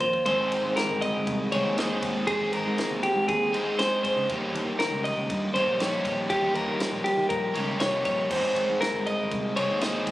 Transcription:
Already playing: clean electric guitar D#3
0.00 fingered electric bass A#1, clean electric guitar D#2 F4 C5, kick, ride
0.13 kick
0.26 fingered electric bass G#1, overdriven electric guitar G#3 C4 D#4 G#4 C5, clean electric guitar C5, kick, ride
0.40 fingered electric bass G#1
0.52 fingered electric bass G#1, ride
0.65 fingered electric bass G#2
0.76 clean electric guitar A#4, snare, ride
0.89 fingered electric bass G1
1.01 clean electric guitar D#5, ride
1.15 fingered electric bass G1
1.27 fingered electric bass C2, kick, ride
1.52 fingered electric bass C2, overdriven electric guitar G#3 C4 D#4 G#4 C5, clean electric guitar C#5, ride
1.65 fingered electric bass D#2
1.77 overdriven electric guitar G#3 C4 D#4 G#4 C5, clean electric guitar D#5, snare, ride
2.02 fingered electric bass D#2, kick, ride
2.27 overdriven electric guitar G#3 C4 D#4 G#4 C5, clean electric guitar G#4, kick, ride
2.41 fingered electric bass G#1
2.52 fingered electric bass G#1, clean electric guitar A#4, ride
2.66 fingered electric bass G#2
2.78 snare, ride
2.91 fingered electric bass D#2
3.03 clean electric guitar G4, ride
3.16 fingered electric bass G#2
3.28 fingered electric bass D#2, clean electric guitar G#4, kick, ride
3.53 overdriven electric guitar G#3 C4 D#4 G#4 C5, ride
3.79 overdriven electric guitar G#3 C4 D#4 G#4 C5, clean electric guitar C5, snare, ride
4.03 clean electric guitar C5, kick, ride
4.17 fingered electric bass C#2
4.29 fingered electric bass D#2, overdriven electric guitar D#3 G3 A#3 D#4 G4 C#5, kick, ride
4.41 fingered electric bass D#2
4.54 fingered electric bass D#2, ride
4.65 fingered electric bass D#3
4.79 clean electric guitar A#4, snare, ride
4.91 fingered electric bass C#2
5.04 clean electric guitar D#5, ride
5.16 fingered electric bass C#2
5.30 fingered electric bass G2, kick, ride
5.54 fingered electric bass G2, overdriven electric guitar D#3 G3 A#3 D#4 G4 C#5, clean electric guitar C5, ride
5.66 fingered electric bass A#1
5.79 overdriven electric guitar D#3 G3 A#3 D#4 G4 C#5, clean electric guitar C#5, snare, ride
6.05 fingered electric bass A#1, kick, ride
6.30 overdriven electric guitar D#3 G3 A#3 D#4 G4 C#5, clean electric guitar G4, kick, ride
6.42 fingered electric bass D#2
6.54 fingered electric bass D#2, clean electric guitar A#4, ride
6.67 fingered electric bass D#3
6.80 snare, ride
6.92 fingered electric bass A#1
7.04 clean electric guitar G4, ride
7.17 fingered electric bass D#3
7.29 fingered electric bass A#1, clean electric guitar A#4, kick, ride
7.54 fingered electric bass C#2, overdriven electric guitar D#3 G3 A#3 D#4 G4 C#5, ride
7.79 fingered electric bass C2, overdriven electric guitar D#3 G3 A#3 D#4 G4 C#5, clean electric guitar C#5, snare, ride
8.05 fingered electric bass A#1, clean electric guitar C#5, kick, ride
8.30 fingered electric bass G#1, overdriven electric guitar G#3 C4 D#4 G#4 C5, clean electric guitar C5, kick, crash
8.44 fingered electric bass G#1
8.56 fingered electric bass G#1, ride
8.70 fingered electric bass G#2
8.81 clean electric guitar A#4, snare, ride
8.94 fingered electric bass G1
9.06 clean electric guitar D#5, ride
9.19 fingered electric bass G1
9.31 fingered electric bass C2, kick, ride
9.56 fingered electric bass C2, overdriven electric guitar G#3 C4 D#4 G#4 C5, clean electric guitar C#5, ride
9.70 fingered electric bass D#2
9.81 overdriven electric guitar G#3 C4 D#4 G#4 C5, clean electric guitar D#5, snare, ride
10.07 fingered electric bass D#2, kick, ride

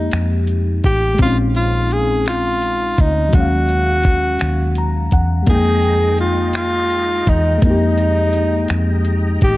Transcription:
Already playing: fm electric piano G#3 A#3 D#4 G4, tenor saxophone D#4
0.12 fingered electric bass F2, finger snap, closed hi-hat
0.47 closed hi-hat
0.84 fingered electric bass A1, tenor saxophone G4, kick, closed hi-hat
1.14 fm electric piano G#3, closed hi-hat
1.19 fingered electric bass A#1, fm electric piano C4 C#4, tenor saxophone F4, kick
1.27 fm electric piano D#4
1.55 tenor saxophone F4, closed hi-hat
1.91 tenor saxophone G#4, closed hi-hat
2.26 tenor saxophone F4, finger snap, closed hi-hat
2.62 closed hi-hat
2.98 fingered electric bass D2, tenor saxophone D#4, kick, closed hi-hat
3.29 fm electric piano F#3, closed hi-hat
3.33 fingered electric bass D#2, fm electric piano G#3 C#4, tenor saxophone F#4, kick
3.40 fm electric piano F5
3.69 closed hi-hat
4.03 kick, closed hi-hat
4.39 fingered electric bass D#2, finger snap, closed hi-hat
4.75 fm electric piano A#5, closed hi-hat
5.11 fingered electric bass E2, fm electric piano F#5, kick, closed hi-hat
5.43 fm electric piano G3 A#3, closed hi-hat
5.47 fingered electric bass F2, tonewheel organ G#3 D#5 G5 A#5, fm electric piano G#3 D#4, tenor saxophone G#4, kick
5.54 fm electric piano G5
5.83 closed hi-hat
6.18 tenor saxophone F4, closed hi-hat
6.53 tenor saxophone F4, finger snap, closed hi-hat
6.90 closed hi-hat
7.27 fingered electric bass E2, tenor saxophone D#4, kick, closed hi-hat
7.58 fm electric piano G#3, closed hi-hat
7.62 fingered electric bass F2, fm electric piano A#3, tenor saxophone D#4, kick
7.67 fm electric piano D#4 G4
7.98 closed hi-hat
8.33 closed hi-hat
8.68 fingered electric bass F2, finger snap, closed hi-hat
9.05 closed hi-hat
9.41 fingered electric bass A1, tenor saxophone G4, kick, closed hi-hat

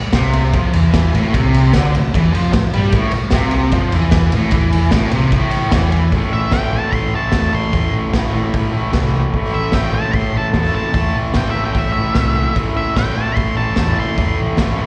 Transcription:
0.13 picked electric bass C2, distorted electric guitar C3, kick, snare, ride
0.33 ride
0.53 picked electric bass F2, distorted electric guitar F3, kick, ride
0.73 picked electric bass E2, distorted electric guitar E3, ride
0.94 kick, snare, ride
1.13 picked electric bass A1, distorted electric guitar A2, ride
1.34 picked electric bass C2, distorted electric guitar C3, kick, ride
1.54 ride
1.74 picked electric bass D2, distorted electric guitar D3, kick, snare, ride
1.95 picked electric bass A1, distorted electric guitar A2, ride
2.14 picked electric bass E2, distorted electric guitar E3, kick, ride
2.33 picked electric bass F2, distorted electric guitar F3, ride
2.53 picked electric bass A1, distorted electric guitar A2, kick, snare, ride
2.73 picked electric bass G2, distorted electric guitar G3, ride
2.92 picked electric bass A1, distorted electric guitar A2, kick, ride
3.11 muted picked electric bass stroke, muted distorted electric guitar stroke, ride
3.31 picked electric bass C2, distorted electric guitar C3, kick, snare, ride
3.51 ride
3.71 picked electric bass F2, distorted electric guitar F3, kick, ride
3.92 picked electric bass E2, distorted electric guitar E3, ride
4.11 kick, snare, ride
4.32 picked electric bass A1, distorted electric guitar A2, ride
4.51 picked electric bass E2, distorted electric guitar E3, kick, ride
4.72 ride
4.91 picked electric bass A1, distorted electric guitar A2, kick, snare, ride
5.11 picked electric bass C2, distorted electric guitar C3, ride
5.32 picked electric bass A1, distorted electric guitar A2, kick, ride
5.51 ride
5.72 picked electric bass E2, distorted electric guitar E3, kick, snare, ride
5.92 ride
6.12 picked electric bass A1, distorted electric guitar A2 E3, kick, open hi-hat
6.17 distorted electric guitar A3
6.33 picked electric bass A1, lead electric guitar E5
6.52 picked electric bass A1, distorted electric guitar A2 E3, lead electric guitar G5, kick, snare, open hi-hat
6.56 distorted electric guitar A3
6.73 picked electric bass A1, distorted electric guitar A3, lead electric guitar A5
6.78 distorted electric guitar E3
6.92 picked electric bass A1, lead electric guitar C6, kick, open hi-hat
7.14 picked electric bass A1, distorted electric guitar A3, lead electric guitar A5
7.18 distorted electric guitar E3
7.32 picked electric bass E2, distorted electric guitar A2, kick, snare, open hi-hat
7.37 distorted electric guitar E3 A3
7.52 picked electric bass A1, lead electric guitar C6
7.73 picked electric bass E2, distorted electric guitar A2 E3, kick, open hi-hat
7.77 distorted electric guitar A3
7.93 picked electric bass A1
8.13 picked electric bass A1, distorted electric guitar A2 E3 A3, kick, snare, open hi-hat
8.33 picked electric bass A1, distorted electric guitar E3 A3
8.54 picked electric bass A1, kick, open hi-hat
8.73 picked electric bass A1, distorted electric guitar E3 A3
8.92 picked electric bass C2, distorted electric guitar A2 E3 A3, kick, snare, open hi-hat
9.33 picked electric bass A1, distorted electric guitar A2 E3 A3, kick, open hi-hat
9.53 picked electric bass A1, lead electric guitar E5
9.72 picked electric bass A1, distorted electric guitar A2 E3, lead electric guitar G5, kick, snare, open hi-hat
9.77 distorted electric guitar A3
9.92 picked electric bass A1, distorted electric guitar A3, lead electric guitar A5
9.97 distorted electric guitar E3
10.13 picked electric bass A1, lead electric guitar C6, kick, open hi-hat
10.34 picked electric bass A1, distorted electric guitar E3 A3, lead electric guitar A5
10.53 picked electric bass E2, distorted electric guitar A2 E3 A3, kick, snare, open hi-hat
10.74 picked electric bass A1, lead electric guitar A5
10.93 picked electric bass E2, distorted electric guitar A2 E3 A3, kick, open hi-hat
11.15 picked electric bass A1
11.34 picked electric bass A1, distorted electric guitar A2 E3, lead electric guitar G5, kick, snare, open hi-hat
11.38 distorted electric guitar A3
11.51 distorted electric guitar A3, lead electric guitar E5
11.57 picked electric bass A1, distorted electric guitar E3
11.65 lead electric guitar G5
11.74 picked electric bass A1, lead electric guitar E5, kick, open hi-hat
11.93 picked electric bass A1, distorted electric guitar A3, lead electric guitar E5
11.99 distorted electric guitar E3
12.14 picked electric bass C2, distorted electric guitar A2 E3, kick, snare, open hi-hat
12.18 distorted electric guitar A3
12.53 picked electric bass A1, distorted electric guitar A2 E3 A3, kick, open hi-hat
12.77 picked electric bass A1, lead electric guitar E5
12.96 picked electric bass A1, distorted electric guitar A2 E3 A3, lead electric guitar G5, kick, snare, open hi-hat
13.15 picked electric bass A1, distorted electric guitar E3 A3, lead electric guitar A5
13.35 picked electric bass A1, lead electric guitar C6, kick, open hi-hat
13.57 picked electric bass A1, distorted electric guitar A3, lead electric guitar A5
13.62 distorted electric guitar E3
13.76 picked electric bass E2, distorted electric guitar A2 E3, kick, snare, open hi-hat
13.81 distorted electric guitar A3
13.97 picked electric bass A1, lead electric guitar C6
14.17 picked electric bass E2, distorted electric guitar A2 E3 A3, kick, open hi-hat
14.40 picked electric bass A1
14.57 picked electric bass A1, distorted electric guitar A2 E3, kick, snare, open hi-hat
14.62 distorted electric guitar A3
14.78 picked electric bass A1, distorted electric guitar A3
14.82 distorted electric guitar E3

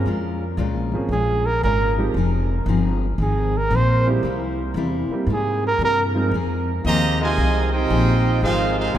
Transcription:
0.06 upright bass F2, steel-string acoustic guitar A#2 G#3 C#4 F4
0.57 upright bass C#2, steel-string acoustic guitar A#2 G#3 C#4 F4
0.74 upright bass A#1
0.92 upright bass G#1, grand piano F3 A#3 C4 C#4 G#4
1.09 upright bass A#1, steel-string acoustic guitar A#2 G#3, trumpet G#4
1.13 steel-string acoustic guitar C#4 F4
1.46 trumpet A#4
1.63 upright bass G#1, steel-string acoustic guitar A#2 G#3 C#4 F4, trumpet A#4
1.98 grand piano F3 G#3 C4 D#4 G4
2.14 upright bass F1, steel-string acoustic guitar F3 C4 D#4
2.19 steel-string acoustic guitar G#4
2.66 upright bass G1, steel-string acoustic guitar F3 C4 D#4
2.70 steel-string acoustic guitar G#4
3.18 upright bass G#1, steel-string acoustic guitar F3 C4 D#4 G#4, trumpet G#4
3.57 trumpet A#4
3.71 upright bass A#1, steel-string acoustic guitar F3 C4 D#4 G#4
3.76 trumpet C5
4.07 grand piano G3 A#3 C4 E4 G4
4.23 upright bass C2, steel-string acoustic guitar C3 G3 A#3 E4
4.74 upright bass E2, steel-string acoustic guitar C3 G3 A#3 E4
5.09 grand piano G3 A#3 C4 E4, muted upright bass stroke
5.13 grand piano G4
5.27 upright bass G#2, steel-string acoustic guitar C3 G3 A#3 E4
5.33 trumpet G#4
5.67 trumpet A#4
5.79 upright bass G2, steel-string acoustic guitar C3 G3 A#3 E4
5.85 trumpet A#4
6.15 grand piano F3 G#3 C4 D#4 A#4
6.31 upright bass F2, steel-string acoustic guitar F3 C4 D#4 G#4
6.84 upright bass D#2, steel-string acoustic guitar F3 C4 D#4 G#4, trombone section A#3, trumpet section G4 C5 D#5 A#5
7.20 trombone section C3 D#3 G#3 C4 F4, trumpet section F4 C5 D#5 G#5
7.38 upright bass C2, steel-string acoustic guitar F3 C4 D#4 G#4
7.72 trombone section C4 D#4 G4, trumpet section F4 C5 D#5 G5
7.90 upright bass A#1, steel-string acoustic guitar F3 C4 D#4 G#4
8.41 upright bass G#1, trombone section D#3 G#3 C4 F4, steel-string acoustic guitar F3 C4 D#4 G#4, trumpet section D#4 G#4 C5 F5
8.76 trombone section G#3 C4 F4, trumpet section D#4 G#4 C5 F5
8.93 upright bass G1, trombone section C3 D#3 G#3, trumpet section F4 C5 G#5

